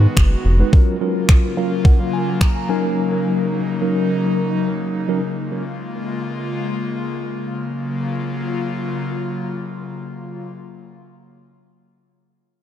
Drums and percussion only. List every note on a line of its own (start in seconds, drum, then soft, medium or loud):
0.17 finger snap loud
0.17 kick loud
0.73 kick loud
1.29 finger snap loud
1.29 kick loud
1.85 kick loud
2.41 finger snap loud
2.41 kick loud